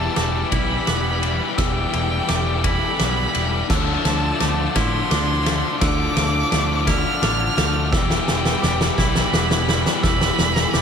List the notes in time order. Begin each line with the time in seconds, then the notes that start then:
Already playing: E2 E3 G3 E4 B4 A5 E6
0.04 E3 G3
0.12 E3 G3
0.16 E1 E3 G3 D6, snare, ride
0.28 E3 G3
0.34 E3 G3
0.42 E3 G3
0.50 B1 E3 G3 E4 B5, kick, ride
0.58 E3 G3
0.65 E3 G3
0.73 E3 G3
0.80 E3 G3
0.87 E1 E3 G3 B3 D6, snare, ride
0.95 E3 G3
1.02 E3 G3
1.10 E3 G3
1.18 E3 G3
1.23 E3 G3, ride
1.33 E3 G3
1.41 E3 G3
1.49 E3 G3
1.57 E1 E2 E3 G3 A4 G5 E6, kick, snare, ride
1.65 E3 G3
1.72 E3 G3
1.80 E3 G3
1.88 E3 G3
1.93 E1 E3 G3, ride
2.03 E3 G3
2.10 E3 G3
2.18 E3 G3
2.26 E1 E3 G3 D6, snare, ride
2.34 E3 G3
2.41 E3 G3
2.49 E3 G3
2.56 E3 G3
2.63 E3 G3 E4 B5, kick, ride
2.70 E3 G3
2.79 E3 G3
2.86 E3 G3
2.93 E3 G3
2.99 B1 E3 G3 B3 D6, snare, ride
3.09 E3 G3
3.17 E3 G3
3.25 E3 G3
3.31 E3 G3, ride
3.35 E1 G3
3.40 E3
3.47 E3 G3
3.55 E3 G3
3.62 E3 G3
3.68 D2 D3 F3 E4 D5 A5 E6, kick, snare, crash
3.76 D3 F3
3.85 D3 F3
3.93 D3 F3
3.99 D3 F3
4.05 D2 D3 F3, snare, ride
4.15 D3 F3
4.24 D3 F3
4.31 D3 F3
4.39 D2 D3 F3 A3 D6, snare, ride
4.46 D3 F3
4.55 D3 F3
4.62 D3 F3
4.70 D3 F3
4.76 A2 D3 F3 E4 C6, kick, snare, ride
4.86 D3 F3
4.94 D3 F3
5.01 D3 F3
5.09 D2 D3 F3 D4 D6, snare, ride
5.18 D3 F3
5.24 D3 F3
5.32 D3 F3
5.40 D3 F3
5.46 D3 A3, snare, ride
5.50 F3
5.56 D3 F3
5.64 D3 F3
5.72 D3 F3
5.81 D2 D3 F3 D5 D6 E6, kick, snare, ride
5.88 D3 F3
5.97 D3 F3
6.03 D3 F3
6.12 D3 F3
6.17 D2 D3 F3, snare, ride
6.28 D3 F3
6.36 D3 F3
6.44 D3 F3
6.51 D2 D3 F3 A3 D6, snare, ride
6.60 D3 F3
6.68 D3 F3
6.74 D3 F3
6.82 D3 F3
6.87 D3 F3 E4 F6, kick, snare, ride
6.98 D3 F3
7.06 D3 F3
7.13 D3 F3
7.21 A1 D3 F3 D4 D6, snare, ride
7.30 D3 F3
7.38 D3 F3
7.45 D3 F3
7.53 D3 F3 A3
7.57 D2 D3, snare, ride
7.61 F3
7.68 D3 F3
7.76 D3 F3
7.85 D3 F3
7.92 E1 E2 E3 G3 B4 G5 E6, kick, snare
7.99 E3 G3
8.08 E3 G3, snare
8.15 E3 G3
8.22 E3 G3
8.28 E1 E3 G3, snare
8.38 E3 G3
8.45 E3 G3, snare
8.55 E3 G3
8.62 E1 E3 G3 D6, snare
8.70 E3 G3
8.77 E3 G3, snare
8.85 E3 G3
8.93 E3 G3
8.98 B1 G3 E4 B5, kick, snare
9.02 E3
9.08 E3 G3
9.15 E3 G3, snare
9.25 E3 G3
9.32 E1 E3 G3 B3 D6, snare
9.39 E3 G3
9.47 E3 G3
9.51 snare
9.55 E3 G3
9.63 E3 G3
9.68 E3 G3, snare
9.73 G3
9.78 E3 G3
9.85 E3 G3, snare
9.93 E3 G3
10.02 E1 E2 E3 G3 A4 B5 E6, kick, snare
10.11 E3 G3
10.19 E3 G3, snare
10.27 E3 G3
10.34 E3 G3
10.38 E1 E3, snare
10.42 E3 G3
10.50 E3 G3
10.56 E3 G3, snare
10.66 E3 G3
10.73 E1 E3 G3 D6, snare